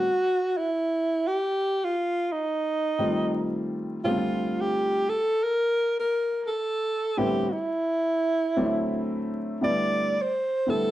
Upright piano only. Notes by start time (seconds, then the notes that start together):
2.99 D#3 G3 A3 C4 F4
4.04 C#3 G3 A3 C4 F4
4.11 D3
7.17 A2 D3 G3 B3 C4 E4
8.57 D3 F#3 A3 C4 D4
8.64 E4
9.61 D3 G3 A3 B3 E4
10.67 D3 G3 A3 B3 E4